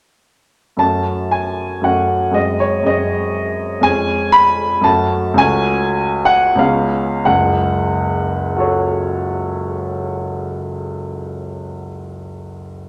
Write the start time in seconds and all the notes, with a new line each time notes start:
0.77 F#2 A3 C#4 F#4 A5
1.31 G#5
1.81 F#2 A3 C#4 F#4 F#5
2.31 F#2 G#3 C4 G#4 D#5
2.60 C#5
2.83 F#2 G#3 C4 G#4 D#5
3.80 F2 G#3 C#4 G#4 G#5
4.32 B5
4.81 F#2 A3 C#4 F#4 A5
5.34 C#2 A3 C#4 F#4
5.38 G#5
6.25 F#5
6.55 C#2 B3 C#4 G#4 F5
7.25 F#1 C#2 F#5
8.57 F#4 A4 C#5